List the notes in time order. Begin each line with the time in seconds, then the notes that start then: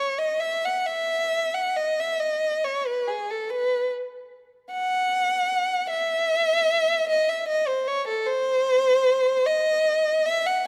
Already playing: C#5
0.19 D#5
0.40 E5
0.65 F#5
0.86 E5
1.54 F#5
1.76 D#5
2.00 E5
2.20 D#5
2.64 C#5
2.87 B4
3.07 G#4
3.30 A4
3.50 B4
4.73 F#5
5.90 E5
7.09 D#5
7.29 E5
7.49 D#5
7.68 C5
7.88 C#5
8.08 A4
8.26 C5
9.46 D#5
10.26 E5
10.46 F#5